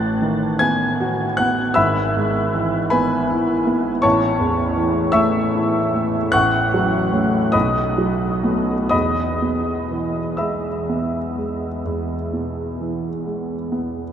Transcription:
0.00 1.73 A1 medium
0.00 0.44 A2 soft
0.00 0.55 A5 medium
0.00 0.56 F#6 medium
0.00 0.59 A6 medium
0.22 0.84 D#3 soft
0.59 1.23 B3 soft
0.59 1.34 G#5 medium
0.59 1.38 G#6 medium
1.00 1.62 F#4 soft
1.37 1.77 B3 soft
1.37 1.74 F#5 medium
1.37 1.76 F#6 medium
1.74 4.01 G#1 medium
1.74 2.88 E5 medium
1.74 2.88 B5 medium
1.74 2.91 E6 medium
2.16 2.77 G#2 soft
2.54 3.16 E3 soft
2.90 3.53 B3 soft
2.90 4.00 B4 medium
2.90 4.00 G#5 medium
2.90 4.03 B5 medium
3.30 3.90 E4 medium
3.67 4.04 B3 soft
4.02 6.29 A1 medium
4.02 5.10 C#5 medium
4.02 5.10 A5 medium
4.02 5.12 C#6 medium
4.40 4.99 E2 soft
4.76 5.38 E3 soft
5.12 5.77 A3 soft
5.12 6.28 E5 medium
5.12 6.28 C#6 medium
5.12 6.31 E6 medium
5.54 6.17 E4 soft
5.94 6.33 A3 soft
6.32 7.51 A1 medium
6.32 7.50 F#5 medium
6.32 7.50 C#6 medium
6.32 7.54 F#6 medium
6.74 7.38 F#3 soft
7.13 7.50 A3 soft
7.13 7.50 C#4 soft
7.52 8.89 B1 soft
7.52 8.88 D#5 medium
7.52 8.88 B5 medium
7.52 8.88 D#6 medium
7.98 8.73 F#3 soft
8.43 8.88 A3 soft
8.43 8.89 B3 soft
8.89 11.81 E2 soft
8.89 10.34 D#5 medium
8.89 10.34 B5 medium
8.89 10.37 D#6 medium
9.42 10.19 B2 soft
9.91 10.68 E3 soft
10.37 11.18 G#3 soft
10.37 14.12 E5 soft
10.37 14.12 B5 soft
10.37 14.12 E6 soft
10.89 11.67 B3 soft
11.38 12.14 G#3 soft
11.86 14.12 E2 soft
12.33 13.07 B2 soft
12.81 13.54 E3 soft
13.26 14.02 G#3 soft
13.72 14.12 B3 soft

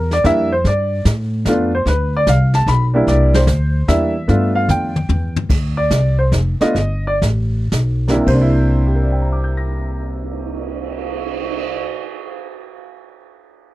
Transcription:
0.00 0.23 E2 medium
0.00 0.11 A#4 medium
0.11 0.25 D5 medium
0.11 snare soft
0.24 0.64 F2 medium
0.24 0.48 G3 medium
0.24 0.49 A#3 medium
0.24 0.49 D4 medium
0.24 0.49 E4 medium
0.24 0.52 E5 loud
0.24 kick soft
0.24 snare soft
0.52 0.65 C5 medium
0.64 1.04 G2 medium
0.64 1.04 D5 medium
0.64 brush sweep soft
0.64 kick soft
0.64 snare soft
1.05 1.45 A2 medium
1.05 kick soft
1.05 snare medium
1.05 hi-hat pedal medium
1.45 1.85 F2 medium
1.45 1.70 A3 medium
1.45 1.71 B3 medium
1.45 1.71 D4 medium
1.45 1.71 F4 medium
1.45 kick soft
1.45 snare medium
1.45 hi-hat pedal medium
1.75 1.87 C5 medium
1.86 2.25 D2 medium
1.86 2.13 B4 medium
1.86 brush sweep soft
1.86 kick soft
1.86 snare soft
2.17 2.28 D5 medium
2.27 2.66 C2 loud
2.27 2.54 F5 medium
2.27 kick soft
2.27 snare medium
2.27 hi-hat pedal medium
2.54 2.67 A5 medium
2.54 snare soft
2.66 3.06 B1 medium
2.66 2.84 B5 medium
2.66 kick soft
2.66 snare soft
2.94 3.45 G3 medium
2.94 3.45 A#3 medium
2.94 3.46 D4 medium
2.94 3.46 E4 medium
3.07 3.46 C2 medium
3.07 3.34 D5 medium
3.07 brush sweep soft
3.07 kick soft
3.07 snare soft
3.34 3.85 C5 medium
3.34 snare medium
3.47 3.87 D2 medium
3.47 kick soft
3.47 snare medium
3.47 hi-hat pedal medium
3.88 4.27 E2 medium
3.88 4.12 G3 medium
3.88 4.12 A#3 medium
3.88 4.13 D4 medium
3.88 4.13 E4 medium
3.88 4.52 E5 medium
3.88 kick soft
3.88 snare medium
3.88 hi-hat pedal medium
4.28 4.68 G2 medium
4.28 4.90 A3 medium
4.28 4.90 B3 medium
4.28 4.91 D4 medium
4.28 4.91 F4 medium
4.28 brush sweep soft
4.28 kick soft
4.28 snare soft
4.55 4.69 F5 medium
4.69 5.08 F2 loud
4.69 5.33 G5 medium
4.69 hi-hat pedal medium
4.69 mid tom medium
4.96 mid tom medium
5.09 5.48 E2 medium
5.09 floor tom medium
5.36 floor tom medium
5.49 5.89 D2 medium
5.49 brush sweep soft
5.49 kick medium
5.49 snare soft
5.49 crash medium
5.77 6.16 D5 medium
5.90 6.31 C2 medium
5.90 kick soft
5.90 snare medium
5.90 hi-hat pedal medium
6.19 6.32 C5 medium
6.32 6.59 F1 medium
6.32 kick soft
6.32 snare medium
6.32 hi-hat pedal medium
6.61 6.74 A3 medium
6.61 6.75 B3 medium
6.61 6.75 D4 medium
6.61 6.75 F4 medium
6.61 7.04 D#5 medium
6.61 muted upright bass stroke soft
6.61 snare soft
6.75 7.20 G1 medium
6.75 brush sweep soft
6.75 kick soft
6.75 snare soft
7.07 7.17 D5 medium
7.22 7.70 A1 medium
7.22 kick soft
7.22 snare medium
7.22 hi-hat pedal medium
7.72 8.25 B1 medium
7.72 kick soft
7.72 snare medium
7.72 hi-hat pedal medium
8.08 8.15 C3 medium
8.08 8.26 G3 medium
8.08 8.23 A#3 medium
8.08 8.26 D4 medium
8.08 8.26 E4 medium
8.08 snare soft
8.16 11.80 C3 medium
8.25 11.86 C2 medium
8.25 11.88 A#3 medium
8.25 11.87 C5 medium
8.25 kick medium
8.25 crash medium
8.33 11.97 D4 medium
8.41 12.05 E4 medium
8.66 cymbal swell soft
8.86 12.46 G4 soft
8.95 12.55 A#4 soft
9.03 12.63 D5 soft
9.12 12.72 G5 soft
9.22 12.81 A#5 soft
9.33 12.92 D6 soft
9.44 13.04 G6 soft
9.57 13.17 A#6 soft

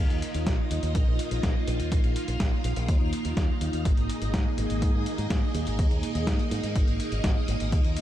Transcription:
0.00 8.01 A#3 medium
0.00 8.01 D#4 medium
0.00 3.81 F4 medium
0.00 1.90 D#5 medium
0.10 0.21 D#2 medium
0.10 closed hi-hat soft
0.22 closed hi-hat medium
0.34 0.45 D#2 medium
0.34 closed hi-hat medium
0.47 0.57 A#1 medium
0.47 kick loud
0.47 snare loud
0.47 closed hi-hat medium
0.71 0.82 D#2 medium
0.71 closed hi-hat medium
0.83 0.94 D#2 medium
0.83 closed hi-hat medium
0.95 1.06 A#1 loud
0.95 kick loud
0.95 closed hi-hat medium
1.07 1.18 A#1 medium
1.19 closed hi-hat medium
1.31 1.42 A#1 medium
1.31 closed hi-hat medium
1.43 1.54 A#1 loud
1.43 kick loud
1.43 snare loud
1.43 closed hi-hat medium
1.68 1.78 A#1 medium
1.68 closed hi-hat medium
1.80 1.91 D#2 medium
1.80 closed hi-hat soft
1.92 2.03 A#1 medium
1.92 3.83 F5 medium
1.92 kick loud
1.92 closed hi-hat medium
2.04 2.15 A#1 medium
2.04 closed hi-hat soft
2.16 closed hi-hat medium
2.28 2.39 A#1 medium
2.28 closed hi-hat soft
2.40 2.51 A#1 medium
2.40 kick loud
2.40 snare loud
2.40 closed hi-hat medium
2.64 2.75 A#1 medium
2.64 closed hi-hat medium
2.76 2.87 A#1 medium
2.76 closed hi-hat medium
2.88 2.99 D#2 loud
2.88 kick loud
2.88 closed hi-hat medium
3.01 3.12 D#2 medium
3.13 closed hi-hat medium
3.25 3.36 D#2 medium
3.25 closed hi-hat medium
3.37 3.48 D#2 loud
3.37 kick loud
3.37 snare loud
3.37 closed hi-hat medium
3.61 3.72 D#2 medium
3.61 closed hi-hat medium
3.73 3.84 D#2 medium
3.73 closed hi-hat soft
3.85 3.96 G#1 loud
3.85 7.69 G#4 medium
3.85 8.01 D#5 medium
3.85 kick loud
3.85 closed hi-hat medium
3.97 4.08 G#1 medium
3.97 closed hi-hat soft
4.10 closed hi-hat medium
4.22 4.32 G#1 medium
4.22 closed hi-hat medium
4.34 4.45 G#2 loud
4.34 kick loud
4.34 snare loud
4.34 closed hi-hat medium
4.58 4.69 G#1 medium
4.58 closed hi-hat medium
4.70 4.81 G#1 medium
4.70 closed hi-hat medium
4.82 4.93 G#2 medium
4.82 kick loud
4.82 closed hi-hat medium
4.94 5.05 G#2 medium
5.06 closed hi-hat medium
5.18 5.29 G#2 medium
5.18 closed hi-hat soft
5.30 5.41 G#2 loud
5.30 kick loud
5.30 snare loud
5.30 closed hi-hat medium
5.55 5.65 D#2 medium
5.55 closed hi-hat medium
5.67 5.78 G#1 medium
5.67 closed hi-hat soft
5.79 5.90 D#2 loud
5.79 kick loud
5.79 closed hi-hat medium
5.91 6.02 D#2 medium
5.91 closed hi-hat soft
6.03 closed hi-hat medium
6.15 6.26 D#2 medium
6.15 closed hi-hat soft
6.27 6.38 G#2 loud
6.27 kick loud
6.27 snare loud
6.27 closed hi-hat medium
6.39 closed hi-hat soft
6.51 6.62 G#2 medium
6.51 closed hi-hat medium
6.64 6.74 G#2 medium
6.64 closed hi-hat soft
6.76 6.87 G#1 medium
6.76 kick loud
6.76 closed hi-hat medium
6.88 6.99 G#1 medium
6.88 closed hi-hat soft
7.00 closed hi-hat medium
7.12 7.23 G#1 medium
7.12 closed hi-hat soft
7.24 7.35 G#1 loud
7.24 kick loud
7.24 snare loud
7.24 closed hi-hat medium
7.48 7.59 G#1 medium
7.48 closed hi-hat medium
7.60 7.71 G#1 medium
7.60 closed hi-hat soft
7.72 7.83 D#2 loud
7.72 8.01 F4 medium
7.72 kick loud
7.72 closed hi-hat medium
7.84 7.95 D#2 medium
7.84 closed hi-hat soft
7.97 closed hi-hat medium

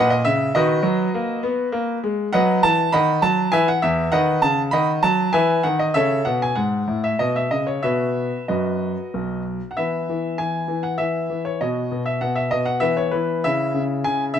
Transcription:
0.00 0.20 A#2 medium
0.00 0.11 B4 medium
0.00 0.11 F#5 loud
0.10 0.25 D#5 medium
0.25 0.49 C#3 medium
0.25 0.54 E5 medium
0.55 0.79 D#3 medium
0.55 2.00 F#4 medium
0.55 2.00 B4 medium
0.55 1.44 D#5 medium
0.83 1.07 F#3 medium
1.14 1.38 A#3 medium
1.43 1.67 B3 medium
1.72 1.97 A#3 medium
2.04 2.27 G#3 medium
2.33 2.58 F#3 medium
2.33 2.61 B4 medium
2.33 2.61 D#5 medium
2.33 2.60 F#5 loud
2.63 2.87 E3 medium
2.63 2.90 A5 loud
2.92 3.17 D#3 medium
2.92 3.21 D#5 medium
2.92 3.21 F#5 medium
2.92 3.23 B5 loud
3.22 3.47 F#3 medium
3.22 3.53 A5 loud
3.52 3.77 E3 medium
3.52 3.67 B4 medium
3.52 3.67 E5 medium
3.52 3.67 G#5 loud
3.68 3.83 F#5 medium
3.82 4.07 E2 medium
3.82 4.13 E5 medium
4.12 4.37 D#3 medium
4.12 4.41 B4 medium
4.12 4.41 D#5 medium
4.12 4.39 F#5 loud
4.42 4.67 C#3 medium
4.42 4.61 A5 loud
4.71 4.97 D#3 medium
4.71 5.02 D#5 medium
4.71 5.02 F#5 medium
4.71 4.90 B5 medium
5.03 5.28 F#3 medium
5.03 5.31 A5 loud
5.33 5.59 E3 medium
5.33 5.63 B4 medium
5.33 5.63 E5 medium
5.33 5.64 G#5 loud
5.63 5.89 D#3 medium
5.63 5.80 F#5 medium
5.79 5.95 D#5 medium
5.94 6.20 C#3 medium
5.94 6.24 A4 medium
5.94 6.24 C#5 medium
5.94 6.25 E5 medium
6.25 6.51 B2 medium
6.25 6.41 F#5 medium
6.42 6.57 G#5 medium
6.55 6.82 G#2 medium
6.55 6.99 F#5 medium
6.87 7.13 A2 medium
7.04 7.19 E5 medium
7.19 7.45 B2 medium
7.19 7.35 D#5 medium
7.36 7.52 E5 medium
7.51 7.77 C#3 medium
7.51 7.67 D#5 medium
7.67 7.83 C#5 medium
7.83 8.29 B2 medium
7.83 8.36 B3 soft
7.83 8.36 F#4 soft
7.83 8.45 B4 medium
7.83 8.44 E5 medium
8.48 8.94 F#2 soft
8.48 9.42 F#4 soft
8.48 9.42 B4 soft
8.48 9.42 D#5 medium
9.14 9.59 B1 medium
9.71 9.78 F#5 medium
9.77 10.08 E3 medium
9.77 11.57 B3 soft
9.77 11.57 E4 soft
9.77 10.39 E5 medium
10.10 10.37 E3 soft
10.38 10.67 E3 soft
10.38 10.84 G#5 medium
10.68 10.97 E3 soft
10.83 10.99 F#5 medium
10.98 11.28 E3 soft
10.98 11.41 E5 medium
11.30 11.60 E3 soft
11.45 11.61 C#5 medium
11.61 11.90 B2 medium
11.61 12.79 B3 soft
11.61 12.79 F#4 soft
11.61 12.03 D#5 medium
11.92 12.20 B2 medium
12.06 12.21 E5 medium
12.21 12.50 B2 soft
12.21 12.37 F#5 medium
12.35 12.51 E5 medium
12.51 12.81 B2 medium
12.51 12.67 D#5 medium
12.66 12.82 F#5 medium
12.80 13.11 E3 medium
12.80 13.41 B3 soft
12.80 13.41 E4 soft
12.80 12.97 E5 medium
12.97 13.13 C#5 medium
13.11 13.44 E3 medium
13.11 13.44 B4 medium
13.44 13.73 C#3 medium
13.44 14.39 C#4 soft
13.44 14.39 E4 soft
13.44 13.81 E5 medium
13.74 14.04 C#3 medium
14.04 14.33 C#3 medium
14.04 14.23 G#5 medium
14.34 14.39 C#3 medium
14.34 14.39 E5 medium

